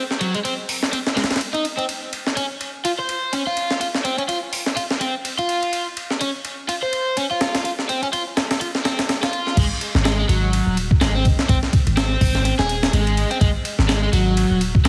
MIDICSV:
0, 0, Header, 1, 4, 480
1, 0, Start_track
1, 0, Tempo, 480000
1, 1889, Time_signature, 4, 2, 24, 8
1, 14885, End_track
2, 0, Start_track
2, 0, Title_t, "Overdriven electric guitar"
2, 0, Program_c, 0, 29
2, 207, Note_on_c, 0, 54, 69
2, 334, Note_off_c, 0, 54, 0
2, 344, Note_on_c, 0, 56, 72
2, 383, Note_off_c, 0, 56, 0
2, 446, Note_on_c, 0, 60, 94
2, 532, Note_off_c, 0, 60, 0
2, 930, Note_on_c, 0, 60, 78
2, 980, Note_off_c, 0, 60, 0
2, 1167, Note_on_c, 0, 56, 69
2, 1219, Note_off_c, 0, 56, 0
2, 1544, Note_on_c, 0, 63, 70
2, 1640, Note_off_c, 0, 63, 0
2, 1784, Note_on_c, 0, 60, 93
2, 1848, Note_off_c, 0, 60, 0
2, 2367, Note_on_c, 0, 61, 76
2, 2452, Note_off_c, 0, 61, 0
2, 2849, Note_on_c, 0, 65, 78
2, 2899, Note_off_c, 0, 65, 0
2, 2986, Note_on_c, 0, 72, 70
2, 3319, Note_off_c, 0, 72, 0
2, 3327, Note_on_c, 0, 61, 80
2, 3412, Note_off_c, 0, 61, 0
2, 3467, Note_on_c, 0, 65, 94
2, 3799, Note_off_c, 0, 65, 0
2, 3810, Note_on_c, 0, 65, 75
2, 3860, Note_off_c, 0, 65, 0
2, 4048, Note_on_c, 0, 60, 69
2, 4175, Note_off_c, 0, 60, 0
2, 4184, Note_on_c, 0, 61, 74
2, 4223, Note_off_c, 0, 61, 0
2, 4288, Note_on_c, 0, 65, 95
2, 4373, Note_off_c, 0, 65, 0
2, 4769, Note_on_c, 0, 65, 80
2, 4820, Note_off_c, 0, 65, 0
2, 5011, Note_on_c, 0, 60, 69
2, 5136, Note_off_c, 0, 60, 0
2, 5388, Note_on_c, 0, 65, 71
2, 5854, Note_off_c, 0, 65, 0
2, 6209, Note_on_c, 0, 61, 77
2, 6293, Note_off_c, 0, 61, 0
2, 6686, Note_on_c, 0, 65, 80
2, 6738, Note_off_c, 0, 65, 0
2, 6825, Note_on_c, 0, 72, 73
2, 7158, Note_off_c, 0, 72, 0
2, 7170, Note_on_c, 0, 61, 79
2, 7254, Note_off_c, 0, 61, 0
2, 7307, Note_on_c, 0, 65, 97
2, 7635, Note_off_c, 0, 65, 0
2, 7647, Note_on_c, 0, 65, 78
2, 7699, Note_off_c, 0, 65, 0
2, 7891, Note_on_c, 0, 60, 71
2, 8017, Note_off_c, 0, 60, 0
2, 8028, Note_on_c, 0, 61, 74
2, 8065, Note_off_c, 0, 61, 0
2, 8130, Note_on_c, 0, 65, 96
2, 8214, Note_off_c, 0, 65, 0
2, 8609, Note_on_c, 0, 65, 81
2, 8660, Note_off_c, 0, 65, 0
2, 8851, Note_on_c, 0, 60, 70
2, 8976, Note_off_c, 0, 60, 0
2, 9229, Note_on_c, 0, 65, 71
2, 9571, Note_off_c, 0, 65, 0
2, 9572, Note_on_c, 0, 56, 83
2, 9655, Note_off_c, 0, 56, 0
2, 10051, Note_on_c, 0, 56, 83
2, 10173, Note_off_c, 0, 56, 0
2, 10190, Note_on_c, 0, 56, 75
2, 10251, Note_off_c, 0, 56, 0
2, 10292, Note_on_c, 0, 54, 77
2, 10761, Note_off_c, 0, 54, 0
2, 11012, Note_on_c, 0, 56, 86
2, 11134, Note_off_c, 0, 56, 0
2, 11148, Note_on_c, 0, 60, 103
2, 11242, Note_off_c, 0, 60, 0
2, 11493, Note_on_c, 0, 60, 83
2, 11575, Note_off_c, 0, 60, 0
2, 11971, Note_on_c, 0, 60, 85
2, 12437, Note_off_c, 0, 60, 0
2, 12449, Note_on_c, 0, 60, 85
2, 12533, Note_off_c, 0, 60, 0
2, 12589, Note_on_c, 0, 68, 100
2, 12920, Note_off_c, 0, 68, 0
2, 12929, Note_on_c, 0, 56, 87
2, 13292, Note_off_c, 0, 56, 0
2, 13306, Note_on_c, 0, 60, 78
2, 13370, Note_off_c, 0, 60, 0
2, 13408, Note_on_c, 0, 56, 82
2, 13493, Note_off_c, 0, 56, 0
2, 13888, Note_on_c, 0, 56, 85
2, 14012, Note_off_c, 0, 56, 0
2, 14029, Note_on_c, 0, 56, 78
2, 14091, Note_off_c, 0, 56, 0
2, 14133, Note_on_c, 0, 54, 81
2, 14601, Note_off_c, 0, 54, 0
2, 14850, Note_on_c, 0, 56, 86
2, 14885, Note_off_c, 0, 56, 0
2, 14885, End_track
3, 0, Start_track
3, 0, Title_t, "808-style bass"
3, 0, Program_c, 1, 38
3, 9571, Note_on_c, 1, 32, 105
3, 9666, Note_off_c, 1, 32, 0
3, 9948, Note_on_c, 1, 32, 90
3, 10241, Note_off_c, 1, 32, 0
3, 10288, Note_on_c, 1, 32, 104
3, 10600, Note_off_c, 1, 32, 0
3, 10664, Note_on_c, 1, 27, 81
3, 10959, Note_off_c, 1, 27, 0
3, 11009, Note_on_c, 1, 32, 97
3, 11321, Note_off_c, 1, 32, 0
3, 11490, Note_on_c, 1, 32, 104
3, 11586, Note_off_c, 1, 32, 0
3, 11867, Note_on_c, 1, 32, 90
3, 12160, Note_off_c, 1, 32, 0
3, 12210, Note_on_c, 1, 32, 107
3, 12521, Note_off_c, 1, 32, 0
3, 12589, Note_on_c, 1, 27, 80
3, 12881, Note_off_c, 1, 27, 0
3, 12930, Note_on_c, 1, 32, 97
3, 13241, Note_off_c, 1, 32, 0
3, 13410, Note_on_c, 1, 32, 101
3, 13506, Note_off_c, 1, 32, 0
3, 13786, Note_on_c, 1, 32, 92
3, 14080, Note_off_c, 1, 32, 0
3, 14128, Note_on_c, 1, 32, 104
3, 14440, Note_off_c, 1, 32, 0
3, 14505, Note_on_c, 1, 27, 80
3, 14799, Note_off_c, 1, 27, 0
3, 14846, Note_on_c, 1, 32, 96
3, 14885, Note_off_c, 1, 32, 0
3, 14885, End_track
4, 0, Start_track
4, 0, Title_t, "Drums"
4, 106, Note_on_c, 9, 38, 40
4, 206, Note_off_c, 9, 38, 0
4, 208, Note_on_c, 9, 51, 62
4, 308, Note_off_c, 9, 51, 0
4, 345, Note_on_c, 9, 51, 40
4, 445, Note_off_c, 9, 51, 0
4, 449, Note_on_c, 9, 51, 77
4, 549, Note_off_c, 9, 51, 0
4, 689, Note_on_c, 9, 46, 74
4, 789, Note_off_c, 9, 46, 0
4, 826, Note_on_c, 9, 38, 42
4, 926, Note_off_c, 9, 38, 0
4, 930, Note_on_c, 9, 51, 87
4, 1030, Note_off_c, 9, 51, 0
4, 1066, Note_on_c, 9, 38, 52
4, 1166, Note_off_c, 9, 38, 0
4, 1169, Note_on_c, 9, 38, 81
4, 1169, Note_on_c, 9, 51, 63
4, 1238, Note_off_c, 9, 38, 0
4, 1238, Note_off_c, 9, 51, 0
4, 1238, Note_on_c, 9, 38, 83
4, 1238, Note_on_c, 9, 51, 63
4, 1306, Note_off_c, 9, 38, 0
4, 1306, Note_off_c, 9, 51, 0
4, 1306, Note_on_c, 9, 38, 81
4, 1306, Note_on_c, 9, 51, 61
4, 1358, Note_off_c, 9, 38, 0
4, 1358, Note_off_c, 9, 51, 0
4, 1358, Note_on_c, 9, 38, 80
4, 1358, Note_on_c, 9, 51, 60
4, 1409, Note_off_c, 9, 51, 0
4, 1409, Note_on_c, 9, 51, 82
4, 1459, Note_off_c, 9, 38, 0
4, 1509, Note_off_c, 9, 51, 0
4, 1545, Note_on_c, 9, 51, 40
4, 1645, Note_off_c, 9, 51, 0
4, 1648, Note_on_c, 9, 51, 66
4, 1748, Note_off_c, 9, 51, 0
4, 1786, Note_on_c, 9, 51, 43
4, 1886, Note_off_c, 9, 51, 0
4, 1887, Note_on_c, 9, 51, 79
4, 1987, Note_off_c, 9, 51, 0
4, 2128, Note_on_c, 9, 51, 65
4, 2228, Note_off_c, 9, 51, 0
4, 2266, Note_on_c, 9, 38, 37
4, 2366, Note_off_c, 9, 38, 0
4, 2368, Note_on_c, 9, 51, 80
4, 2468, Note_off_c, 9, 51, 0
4, 2608, Note_on_c, 9, 51, 60
4, 2708, Note_off_c, 9, 51, 0
4, 2847, Note_on_c, 9, 51, 86
4, 2947, Note_off_c, 9, 51, 0
4, 3088, Note_on_c, 9, 51, 64
4, 3188, Note_off_c, 9, 51, 0
4, 3328, Note_on_c, 9, 51, 82
4, 3428, Note_off_c, 9, 51, 0
4, 3568, Note_on_c, 9, 51, 65
4, 3668, Note_off_c, 9, 51, 0
4, 3705, Note_on_c, 9, 38, 47
4, 3805, Note_off_c, 9, 38, 0
4, 3808, Note_on_c, 9, 51, 79
4, 3908, Note_off_c, 9, 51, 0
4, 3945, Note_on_c, 9, 38, 40
4, 4045, Note_off_c, 9, 38, 0
4, 4048, Note_on_c, 9, 51, 66
4, 4148, Note_off_c, 9, 51, 0
4, 4184, Note_on_c, 9, 51, 42
4, 4284, Note_off_c, 9, 51, 0
4, 4288, Note_on_c, 9, 51, 80
4, 4388, Note_off_c, 9, 51, 0
4, 4527, Note_on_c, 9, 46, 71
4, 4627, Note_off_c, 9, 46, 0
4, 4664, Note_on_c, 9, 38, 43
4, 4764, Note_off_c, 9, 38, 0
4, 4767, Note_on_c, 9, 51, 88
4, 4867, Note_off_c, 9, 51, 0
4, 4905, Note_on_c, 9, 38, 54
4, 5005, Note_off_c, 9, 38, 0
4, 5009, Note_on_c, 9, 51, 65
4, 5109, Note_off_c, 9, 51, 0
4, 5248, Note_on_c, 9, 51, 83
4, 5348, Note_off_c, 9, 51, 0
4, 5385, Note_on_c, 9, 51, 41
4, 5485, Note_off_c, 9, 51, 0
4, 5488, Note_on_c, 9, 51, 64
4, 5588, Note_off_c, 9, 51, 0
4, 5626, Note_on_c, 9, 51, 42
4, 5726, Note_off_c, 9, 51, 0
4, 5728, Note_on_c, 9, 51, 79
4, 5828, Note_off_c, 9, 51, 0
4, 5969, Note_on_c, 9, 51, 63
4, 6069, Note_off_c, 9, 51, 0
4, 6105, Note_on_c, 9, 38, 37
4, 6205, Note_off_c, 9, 38, 0
4, 6207, Note_on_c, 9, 51, 80
4, 6307, Note_off_c, 9, 51, 0
4, 6447, Note_on_c, 9, 51, 62
4, 6547, Note_off_c, 9, 51, 0
4, 6687, Note_on_c, 9, 51, 87
4, 6787, Note_off_c, 9, 51, 0
4, 6928, Note_on_c, 9, 51, 63
4, 7028, Note_off_c, 9, 51, 0
4, 7168, Note_on_c, 9, 51, 85
4, 7268, Note_off_c, 9, 51, 0
4, 7408, Note_on_c, 9, 38, 98
4, 7408, Note_on_c, 9, 51, 75
4, 7508, Note_off_c, 9, 38, 0
4, 7508, Note_off_c, 9, 51, 0
4, 7546, Note_on_c, 9, 38, 102
4, 7546, Note_on_c, 9, 51, 76
4, 7646, Note_off_c, 9, 38, 0
4, 7646, Note_off_c, 9, 51, 0
4, 7650, Note_on_c, 9, 51, 81
4, 7750, Note_off_c, 9, 51, 0
4, 7787, Note_on_c, 9, 38, 39
4, 7887, Note_off_c, 9, 38, 0
4, 7891, Note_on_c, 9, 51, 65
4, 7991, Note_off_c, 9, 51, 0
4, 8028, Note_on_c, 9, 51, 43
4, 8128, Note_off_c, 9, 51, 0
4, 8130, Note_on_c, 9, 51, 82
4, 8230, Note_off_c, 9, 51, 0
4, 8370, Note_on_c, 9, 38, 96
4, 8370, Note_on_c, 9, 51, 73
4, 8470, Note_off_c, 9, 38, 0
4, 8470, Note_off_c, 9, 51, 0
4, 8508, Note_on_c, 9, 38, 99
4, 8508, Note_on_c, 9, 51, 77
4, 8608, Note_off_c, 9, 38, 0
4, 8608, Note_off_c, 9, 51, 0
4, 8610, Note_on_c, 9, 51, 87
4, 8710, Note_off_c, 9, 51, 0
4, 8748, Note_on_c, 9, 38, 54
4, 8848, Note_off_c, 9, 38, 0
4, 8851, Note_on_c, 9, 38, 97
4, 8851, Note_on_c, 9, 51, 74
4, 8951, Note_off_c, 9, 38, 0
4, 8951, Note_off_c, 9, 51, 0
4, 8988, Note_on_c, 9, 38, 100
4, 8988, Note_on_c, 9, 51, 72
4, 9088, Note_off_c, 9, 38, 0
4, 9088, Note_off_c, 9, 51, 0
4, 9091, Note_on_c, 9, 38, 100
4, 9091, Note_on_c, 9, 51, 76
4, 9191, Note_off_c, 9, 38, 0
4, 9191, Note_off_c, 9, 51, 0
4, 9228, Note_on_c, 9, 38, 98
4, 9228, Note_on_c, 9, 51, 74
4, 9328, Note_off_c, 9, 38, 0
4, 9328, Note_off_c, 9, 51, 0
4, 9331, Note_on_c, 9, 51, 57
4, 9431, Note_off_c, 9, 51, 0
4, 9469, Note_on_c, 9, 38, 33
4, 9569, Note_off_c, 9, 38, 0
4, 9571, Note_on_c, 9, 36, 107
4, 9571, Note_on_c, 9, 49, 91
4, 9571, Note_on_c, 9, 51, 84
4, 9671, Note_off_c, 9, 36, 0
4, 9671, Note_off_c, 9, 49, 0
4, 9671, Note_off_c, 9, 51, 0
4, 9812, Note_on_c, 9, 51, 68
4, 9912, Note_off_c, 9, 51, 0
4, 9950, Note_on_c, 9, 38, 40
4, 10050, Note_off_c, 9, 38, 0
4, 10053, Note_on_c, 9, 38, 114
4, 10053, Note_on_c, 9, 51, 88
4, 10153, Note_off_c, 9, 38, 0
4, 10153, Note_off_c, 9, 51, 0
4, 10292, Note_on_c, 9, 51, 68
4, 10392, Note_off_c, 9, 51, 0
4, 10532, Note_on_c, 9, 51, 93
4, 10632, Note_off_c, 9, 51, 0
4, 10772, Note_on_c, 9, 51, 68
4, 10872, Note_off_c, 9, 51, 0
4, 10908, Note_on_c, 9, 36, 93
4, 11008, Note_off_c, 9, 36, 0
4, 11011, Note_on_c, 9, 38, 119
4, 11011, Note_on_c, 9, 51, 92
4, 11111, Note_off_c, 9, 38, 0
4, 11111, Note_off_c, 9, 51, 0
4, 11251, Note_on_c, 9, 36, 97
4, 11251, Note_on_c, 9, 51, 69
4, 11351, Note_off_c, 9, 36, 0
4, 11351, Note_off_c, 9, 51, 0
4, 11389, Note_on_c, 9, 38, 51
4, 11489, Note_off_c, 9, 38, 0
4, 11491, Note_on_c, 9, 36, 104
4, 11491, Note_on_c, 9, 51, 85
4, 11591, Note_off_c, 9, 36, 0
4, 11591, Note_off_c, 9, 51, 0
4, 11629, Note_on_c, 9, 38, 43
4, 11729, Note_off_c, 9, 38, 0
4, 11731, Note_on_c, 9, 36, 96
4, 11731, Note_on_c, 9, 51, 70
4, 11831, Note_off_c, 9, 36, 0
4, 11831, Note_off_c, 9, 51, 0
4, 11869, Note_on_c, 9, 51, 45
4, 11969, Note_off_c, 9, 51, 0
4, 11971, Note_on_c, 9, 38, 117
4, 11971, Note_on_c, 9, 51, 86
4, 12071, Note_off_c, 9, 38, 0
4, 12071, Note_off_c, 9, 51, 0
4, 12211, Note_on_c, 9, 36, 93
4, 12211, Note_on_c, 9, 46, 80
4, 12311, Note_off_c, 9, 36, 0
4, 12311, Note_off_c, 9, 46, 0
4, 12348, Note_on_c, 9, 38, 46
4, 12448, Note_off_c, 9, 38, 0
4, 12451, Note_on_c, 9, 51, 92
4, 12551, Note_off_c, 9, 51, 0
4, 12589, Note_on_c, 9, 38, 57
4, 12689, Note_off_c, 9, 38, 0
4, 12693, Note_on_c, 9, 51, 68
4, 12793, Note_off_c, 9, 51, 0
4, 12830, Note_on_c, 9, 38, 114
4, 12930, Note_off_c, 9, 38, 0
4, 12933, Note_on_c, 9, 51, 93
4, 13033, Note_off_c, 9, 51, 0
4, 13071, Note_on_c, 9, 51, 43
4, 13171, Note_off_c, 9, 51, 0
4, 13174, Note_on_c, 9, 51, 69
4, 13274, Note_off_c, 9, 51, 0
4, 13310, Note_on_c, 9, 51, 45
4, 13410, Note_off_c, 9, 51, 0
4, 13411, Note_on_c, 9, 36, 110
4, 13412, Note_on_c, 9, 51, 88
4, 13511, Note_off_c, 9, 36, 0
4, 13512, Note_off_c, 9, 51, 0
4, 13651, Note_on_c, 9, 51, 69
4, 13751, Note_off_c, 9, 51, 0
4, 13788, Note_on_c, 9, 38, 40
4, 13888, Note_off_c, 9, 38, 0
4, 13890, Note_on_c, 9, 38, 111
4, 13890, Note_on_c, 9, 51, 86
4, 13990, Note_off_c, 9, 38, 0
4, 13990, Note_off_c, 9, 51, 0
4, 14130, Note_on_c, 9, 51, 68
4, 14230, Note_off_c, 9, 51, 0
4, 14370, Note_on_c, 9, 51, 91
4, 14470, Note_off_c, 9, 51, 0
4, 14610, Note_on_c, 9, 51, 70
4, 14710, Note_off_c, 9, 51, 0
4, 14747, Note_on_c, 9, 36, 94
4, 14847, Note_off_c, 9, 36, 0
4, 14851, Note_on_c, 9, 38, 117
4, 14851, Note_on_c, 9, 51, 92
4, 14885, Note_off_c, 9, 38, 0
4, 14885, Note_off_c, 9, 51, 0
4, 14885, End_track
0, 0, End_of_file